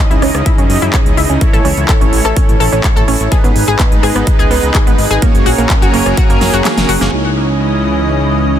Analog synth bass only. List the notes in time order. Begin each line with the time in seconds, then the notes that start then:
0.11 C#2
0.22 C#2
0.35 C#2
0.58 F#2
0.70 F#2
0.82 F#2
1.06 C#2
1.17 C#2
1.30 C#2
1.54 A1
1.65 C#2
1.77 C#2
2.01 A1
2.13 A1
2.25 A1
2.49 A1
2.60 A1
2.73 A1
2.96 A1
3.08 A1
3.20 A1
3.44 G#1
3.56 G#1
3.68 G#1
3.92 G#1
4.03 G#1
4.15 G#1
4.39 C#2
4.51 C#2
4.63 C#2
4.87 G#1
4.98 G#1
5.11 G#1
5.35 F#1
5.46 A#1
5.58 A#1
5.82 F#1
5.94 F#1
6.06 F#1
6.30 F#1
6.41 F#1
6.54 F#1
6.77 F#1
6.89 F#1
7.01 F#1
7.13 C#2